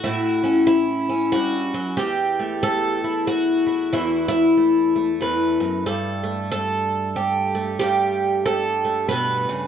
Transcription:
twelve-string acoustic guitar
Already playing: F#4
0.04 A2 E4
0.44 C#4
0.67 E4
1.09 C#4
1.32 G2 F#4
1.74 F#2
1.97 E2 G4
2.39 A3
2.63 A4
3.04 E4
3.27 F#4
3.67 E4
3.93 E2 E4
4.28 E4
4.57 A3
4.96 A3
5.21 E2 B4
5.60 F#2
5.86 G2 A4
6.24 A3
6.52 A4
7.16 G4
7.55 A3
7.79 G2 G4
8.46 A4
8.85 A3
9.09 B2 B4
9.49 C#3

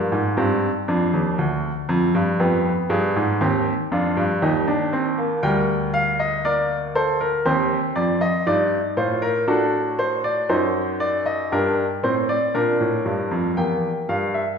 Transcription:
grand piano
Already playing: G2 A#3 F4
0.12 G#2
0.37 G2 C4
0.88 F2 D4
1.14 D#2
1.38 D2
1.89 F2
2.15 G2
2.40 F2 B3 G4
2.90 G2 G#4
3.16 G#2
3.41 D#2 C4 G4
3.92 F2 D4 F4
4.17 G2
4.42 D#2 D#4 G4
4.67 D4
4.93 C4
5.18 A#3
5.43 D2 G3 A#4 G5
5.94 F5
6.19 D#5
6.45 A#3 A#4 D5
6.95 A4 C5
7.21 A#4
7.46 D#2 C4 G4 C5
7.96 F2 D5
8.21 D#5
8.47 G2 D#4 D5
8.97 A2 F4 C5
9.22 A#4
9.48 D4 F#4 A4
9.99 C5
10.24 D5
10.49 F#2 D#4 C5
11.00 D5
11.26 D#5
11.52 G2 D4 G4 A#4
12.03 A2 C4 C5
12.29 D5
12.55 A#2 D4 A#4
12.80 A2
13.05 G2
13.31 F2
13.57 E2 A#3 G4 G5
14.09 G2 F5
14.34 E5

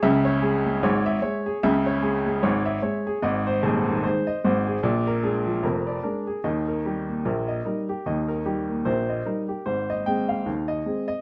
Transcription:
upright piano
0.03 C#2 C#3 E5
0.25 C#5
0.42 G#3 G#4
0.66 G#3
0.83 G#1 G#2 C#5
1.06 E5
1.22 G#3 C#5
1.46 G#4
1.63 C#2 C#3 E5
1.86 C#5
2.03 G#3 G#4
2.26 G#3
2.43 G#1 G#2 C#5
2.66 E5
2.82 G#3 C#5
3.07 G#4
3.22 G#1 G#2 D#5
3.47 C5
3.63 D#1 D#2 G#4
3.87 D#3
4.03 G#3 D#4 C5
4.27 D#5
4.44 G#1 G#2 C5
4.67 G#4
4.83 A#1 A#2 D5
5.07 A#4
5.23 G#3 D4 G#4
5.47 F3
5.63 F1 F2 A#4
5.87 D5
6.03 G#3 D4 A#4
6.27 G#4
6.44 D#2 D#3 D#5
6.68 A#4
6.85 G3 D#4 G4
7.08 A#3
7.25 A#1 A#2 A#4
7.48 D#5
7.65 G3 D#4 A#4
7.89 G4
8.06 D#2 D#3 D#5
8.28 A#4
8.46 G3 D#4 G4
8.69 A#3
8.85 A#1 A#2 A#4 C5
9.10 D#5
9.25 G3 D#4 A#4
9.48 G4
9.66 G#1 G#2 C5
9.90 D#5
10.06 G#3 C4 G#4 G5
10.29 F5
10.46 D#2 D#3
10.68 D#5
10.86 G#3 C4 G#4
11.08 D#5

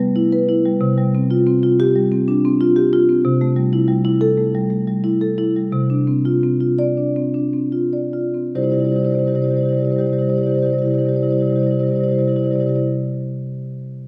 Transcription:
marimba
Already playing: C3
0.00 G3
0.16 E4
0.32 B4
0.49 E4
0.65 G3
0.81 C3
0.98 G3
1.15 C4
1.31 F4
1.47 C4
1.63 F4
1.80 G4
1.96 G3
2.12 C4
2.28 D4
2.45 C4
2.61 F4
2.76 G4
2.93 F4
3.09 C4
3.25 C3
3.41 A3
3.56 G3
3.73 E4
3.88 G3
4.05 E4
4.21 A4
4.38 A3
4.55 G3
4.70 A3
4.87 G3
5.04 E4
5.21 A4
5.38 E4
5.56 G3
5.72 C3
5.90 D4
6.07 C4
6.25 F4
6.44 C4
6.61 F4
6.79 D5
6.97 D4
7.16 C4
7.34 D4
7.53 C4
7.72 F4
7.93 D5
8.13 F4
8.34 C4
8.55 C3 G3 E4 G4 C5 D5
8.62 C3 G3 E4 G4 C5 D5
8.70 G3 E4 G4 C5 D5
8.74 C3 C5 D5
8.79 G3 E4 G4
8.85 C3 G4 C5 D5
8.89 G3 E4 C5 D5
8.95 C3 E4 G4 C5
9.00 G3 G4 D5
9.05 C3 E4 C5 D5
9.10 G3 E4 G4 C5 D5
9.15 C3 G3 G4
9.19 E4 C5 D5
9.25 C3 G3 E4 G4 C5 D5
9.34 C3 G3 E4 G4 C5 D5
9.42 C3 E4 G4 C5 D5
9.46 G3 C5 D5
9.50 C3 E4 G4
9.55 G3 G4 C5 D5
9.61 C3 G3 E4 C5 D5
9.65 E4 G4
9.70 C3 G3 C5 D5
9.75 E4 G4 C5
9.79 C3 G3 G4 D5
9.85 G3 E4 C5 D5
9.90 C3 E4 G4 C5 D5
9.96 G3 G4 C5 D5
10.01 C3 E4
10.05 G3 G4 C5 D5
10.10 C3 G3 E4 G4 C5
10.14 D5
10.19 C3 G3 E4 G4 C5 D5
10.26 C3 G3 E4 G4 C5 D5
10.34 C3 G3 E4 G4 C5 D5
10.42 E4 C5 D5
10.46 C3 G3 G4 C5
10.51 E4 G4 D5
10.55 C3 G3 E4 C5 D5
10.62 C3 G3 E4 G4 C5 D5
10.70 C3 G3 E4 G4 C5 D5
10.78 G3 E4 G4 C5 D5
10.85 C3 G4 C5 D5
10.90 G3 E4 G4 C5
10.94 C3 G3 D5
10.99 E4 G4 C5 D5
11.05 C3 G3 E4 G4 C5
11.09 D5
11.13 C3 G3 E4 G4 C5 D5
11.21 C3 G3 E4 G4 C5 D5
11.28 G3 E4 G4 C5 D5
11.33 C3 C5
11.38 G3 E4 G4 D5
11.42 C3 C5 D5
11.48 G3 E4 G4 C5
11.52 C3 E4 G4 D5
11.57 G3 C5 D5
11.62 C3 E4 G4 C5
11.67 G3 D5
11.71 C3 G3 E4 G4 C5 D5
11.79 C3 E4 G4 C5 D5
11.83 G3 E4 C5
11.88 C3 G4 D5
11.92 G3 E4 C5 D5
11.96 C3 G4
12.01 G3 E4 G4 C5 D5
12.08 C3 G3 G4 C5 D5
12.12 E4 C5
12.19 C3 G3 E4 G4 C5 D5
12.25 C3 G3 E4 G4 D5
12.30 C5 D5
12.36 C3 G3 E4 G4 C5 D5
12.43 C3 G3 E4 G4 C5 D5
12.51 G3 E4 G4 C5 D5
12.56 C3 G3 C5
12.60 E4 G4 D5
12.67 C3 G3 E4 G4 C5 D5
12.74 C3 G3 E4 C5 D5

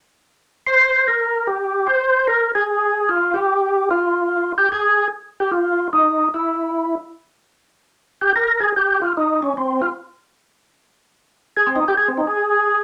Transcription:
tonewheel organ
0.67 C5
1.08 A#4
1.47 G4
1.87 C5
2.27 A#4
2.55 G#4
3.09 F4
3.34 G4
3.91 F4
4.58 G4
4.72 G#4
5.40 G4
5.51 F4
5.93 D#4
6.34 E4
8.21 G4
8.36 A#4
8.60 G#4
8.76 G4
9.02 F4
9.17 D#4
9.42 C#4
9.57 C4
9.82 F4
11.57 G#4
11.66 C4
11.76 D#4
11.88 G4
11.97 G#4
12.08 C4
12.17 D#4
12.27 G#4

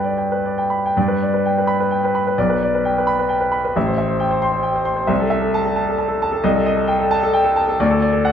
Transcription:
grand piano
Already playing: G2 B4 D5 G5 B5
0.04 D5
0.18 G5
0.32 B4
0.46 D5
0.58 G5
0.70 B5
0.86 G5
0.97 G2 D5
1.08 B4
1.22 D5
1.34 B4
1.46 G5
1.58 B4
1.67 B5
1.80 B4
1.91 G5
2.05 B4
2.15 B5
2.27 B4
2.38 B1 D5
2.50 B4
2.63 D5
2.75 B4
2.85 G5
2.98 B4
3.07 B5
3.19 B4
3.29 G5
3.41 B4
3.52 B5
3.65 B4
3.76 A1 E5
3.86 C5
3.98 E5
4.08 C5
4.20 G5
4.31 C5
4.42 C6
4.52 C5
4.63 G5
4.76 C5
4.85 C6
4.96 C5
5.07 C2 E5
5.20 A4
5.30 E5
5.42 A4
5.54 A5
5.66 A4
5.76 A5
5.88 A4
5.98 A5
6.08 A4
6.22 A5
6.32 A4
6.44 C2 D#5
6.56 A4
6.66 D#5
6.77 A4
6.88 G5
7.00 A4
7.11 A5
7.23 A4
7.33 G5
7.44 A4
7.56 A5
7.68 A4
7.80 D2 D5
7.91 A4
8.02 D5
8.13 A4
8.25 F#5

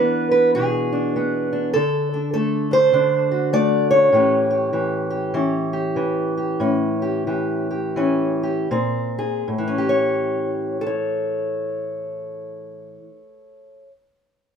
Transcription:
steel-string acoustic guitar
Already playing: E3 B3 D4 B4
0.31 B4
0.55 B2 G#4
0.92 D4
1.16 B3
1.53 D4
1.74 D3 A4
2.14 D4
2.34 A3 A4
2.71 D4 C5
2.93 D3 D4
3.32 F#4
3.53 A3 D5
3.91 C#5
4.13 A2 E3 C#4 G4
4.51 G4
4.73 E3 G4
5.11 G4
5.34 E3 C#4
5.73 G4
5.96 E3
6.38 G4
6.60 A2 C#4
7.02 G4
7.27 E3 G4
7.71 G4
7.96 E3 C#4
8.43 G4
8.71 A#2 C4
9.19 G#4
9.48 A2
9.58 E3
9.68 C#4
9.78 G4
9.89 C#5
10.81 A4
10.87 C#5

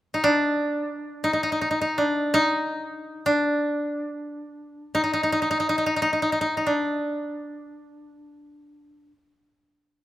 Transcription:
koto
0.14 D#4
0.24 D4
1.24 D#4
1.33 D#4
1.43 D#4
1.52 D#4
1.61 D#4
1.71 D#4
1.81 D#4
1.98 D4
2.34 D#4
3.26 D4
4.95 D#4
5.04 D#4
5.13 D#4
5.23 D#4
5.32 D#4
5.42 D#4
5.51 D#4
5.60 D#4
5.69 D#4
5.78 D#4
5.86 D#4
5.96 D#4
6.02 D#4
6.13 D#4
6.22 D#4
6.32 D#4
6.41 D#4
6.57 D#4
6.66 D4

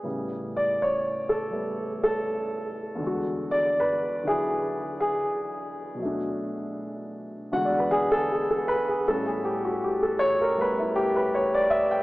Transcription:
grand piano
0.03 A2 C#3 G3 B3
0.57 D5
0.82 C#5
1.29 A4
1.50 G3 A3 B3
2.04 A4
2.95 E2 D3
3.03 G#3
3.07 F#4
3.51 D5
3.80 B4
4.24 D3 F#3 E4 G#4
5.00 G#4
5.95 B2 F#3
6.02 A3 D4
7.52 E2 D3 G#3 F#4 F#5
7.65 D5
7.79 B4
7.91 G#4
8.12 A4
8.32 G#4
8.51 A4
8.68 B4
8.89 G#4
9.08 A2 G3 B3 C#4 A4
9.26 G#4
9.45 G4
9.65 F#4
9.84 G4
10.03 A4
10.19 C#5
10.41 A#4
10.56 G3 A3 B3
10.61 B4
10.79 E4
10.96 G4
11.16 B4
11.35 C#5
11.54 D5
11.70 E5
11.91 G5

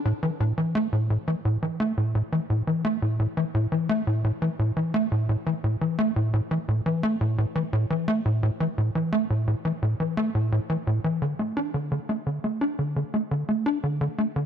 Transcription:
analog synth bass
0.05 A2
0.23 E3
0.40 A2
0.58 E3
0.75 A3
0.93 A2
1.10 A2
1.28 E3
1.45 A2
1.63 E3
1.80 A3
1.97 A2
2.15 A2
2.32 E3
2.50 A2
2.67 E3
2.85 A3
3.02 A2
3.19 A2
3.37 E3
3.55 A2
3.72 E3
3.89 A3
4.07 A2
4.24 A2
4.42 E3
4.59 A2
4.77 E3
4.94 A3
5.12 A2
5.29 A2
5.46 E3
5.64 A2
5.81 E3
5.99 A3
6.16 A2
6.33 A2
6.51 E3
6.68 A2
6.86 E3
7.03 A3
7.21 A2
7.38 A2
7.55 E3
7.73 A2
7.90 E3
8.08 A3
8.25 A2
8.43 A2
8.60 E3
8.78 A2
8.95 E3
9.12 A3
9.30 A2
9.47 A2
9.65 E3
9.82 A2
10.00 E3
10.17 A3
10.35 A2
10.52 A2
10.69 E3
10.87 A2
11.04 E3
11.22 D3
11.39 A3
11.57 D4
11.74 D3
11.91 D3
12.09 A3
12.26 D3
12.44 A3
12.61 D4
12.79 D3
12.96 D3
13.14 A3
13.31 D3
13.49 A3
13.66 D4
13.83 D3
14.01 D3
14.18 A3
14.36 D3

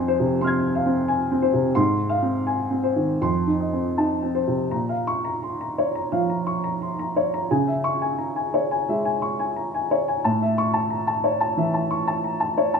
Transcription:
upright piano
Already playing: F2 F5 G#5 C6
0.00 C4
0.08 C5
0.20 C3
0.41 C4 C6 F6
0.47 G#6
0.75 F5
0.86 C4
1.08 G#5
1.31 C4
1.42 C5
1.53 C3
1.75 G#2 C6
2.09 F5
2.22 C4
2.47 G#5
2.71 C4
2.83 C5
2.96 D#3
3.22 F2 C6
3.47 D#4
3.60 D#5
3.73 C4
3.98 D#4 A5
4.23 C4
4.35 C5
4.47 C3
4.71 A#2 A#5
4.89 F5
5.07 C#6
5.25 A#5
5.43 C6
5.61 A#5
5.78 C#5
5.95 A#5
6.12 F3 F5
6.30 A#5
6.47 C#6
6.64 A#5
6.82 C6
6.99 A#5
7.16 C#5
7.34 A#5
7.51 C#3 G#5
7.68 E5
7.84 C#6
8.02 G#5
8.18 A#5
8.36 G#5
8.54 C#5
8.71 G#5
8.89 G#3 E5
9.05 G#5
9.22 C#6
9.40 G#5
9.56 A#5
9.74 G#5
9.91 C#5
10.08 G#5
10.25 A2 A5
10.42 E5
10.58 C#6
10.74 A5
10.90 A#5
11.07 A5
11.24 C#5
11.41 A5
11.57 E3 E5
11.74 A5
11.91 C#6
12.08 A5
12.24 A#5
12.40 A5
12.58 C#5
12.74 A5

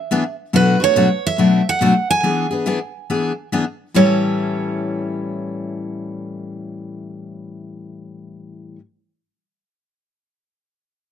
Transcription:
steel-string acoustic guitar
Already playing: E5
0.11 E3 B3 D4 G#4
0.53 B2 F#3 A3 D4 F#4 B4
0.80 A3 D4 F#4 C#5
0.96 B2 F#3 A3 D4 F#4
1.27 E5
1.38 B2 F#3 A3 D4 F#4
1.69 F#5
1.81 B2 F#3 A3 D4 F#4
2.11 G#5
2.23 E3 B3 D4 G#4
2.51 B3 D4 G#4
2.66 E3 B3 D4 G#4
3.10 E3 B3 D4 G#4
3.52 E3 B3 D4 G#4
3.94 A2 E3 G3 C#4 E4 A4 C#5

